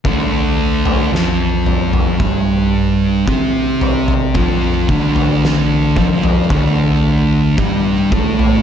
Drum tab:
SD |----o-----------|----o-----------|
FT |o--o--ooo-----oo|o--o--ooo-----oo|
BD |o-------o---o---|o-o---o-o---o-o-|